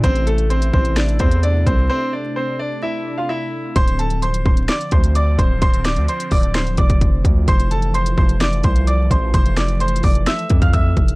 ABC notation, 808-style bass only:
X:1
M:4/4
L:1/16
Q:1/4=129
K:Dm
V:1 name="808-style bass" clef=bass
A,,,6 A,,,4 E,,4 C,,2 | z16 | D,,,6 D,,,2 z2 D,,4 D,,,2 | D,,,3 D,, z2 D,,,4 F,,,4 D,,2 |
F,,,6 F,,,4 C,,4 A,,,2 | F,,,6 F,,,2 z2 F,,4 F,,,2 |]